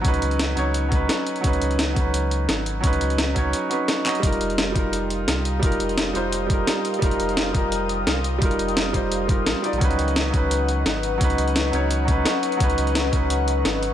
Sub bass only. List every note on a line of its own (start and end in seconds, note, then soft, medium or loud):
0.05 0.20 C#2 loud
0.22 0.56 C#2 medium
0.57 1.08 C#2 medium
1.44 1.60 C#2 loud
1.62 1.95 C#2 medium
1.97 2.48 C#2 medium
2.49 2.82 G#1 medium
2.84 3.00 C#2 medium
3.01 3.35 C#2 medium
3.36 3.54 C#2 medium
4.23 4.39 F1 medium
4.41 4.74 F1 medium
4.75 5.27 F1 medium
5.28 5.61 C2 medium
5.63 5.79 F1 medium
5.80 6.14 F1 medium
6.15 6.66 F1 medium
7.02 7.18 F1 loud
7.20 7.53 F1 medium
7.55 8.06 F1 medium
8.07 8.41 C2 medium
8.42 8.58 F1 loud
8.59 8.93 F1 medium
8.94 9.48 F1 medium
9.46 9.55 A#1 medium
9.73 9.81 A#1 medium
9.81 9.97 C#2 loud
9.99 10.32 C#2 medium
10.34 10.85 C#2 medium
10.86 11.20 G#1 medium
11.21 11.37 C#2 loud
11.38 11.72 C#2 medium
11.73 12.24 C#2 medium
12.60 12.76 C#2 loud
12.78 13.12 C#2 medium
13.13 13.64 C#2 medium
13.65 13.94 G#1 medium